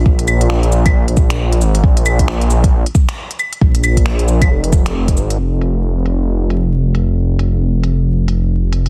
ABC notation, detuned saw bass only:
X:1
M:4/4
L:1/16
Q:"Swing 16ths" 1/4=135
K:Bbm
V:1 name="Detuned saw bass" clef=bass
B,,,8- B,,, B,,,4- B,,, A,,,2 | B,,,8- B,,, z6 z | B,,,8 F,,,4 F,,,2 A,,,2 | F,,,16- |
F,,,16 |]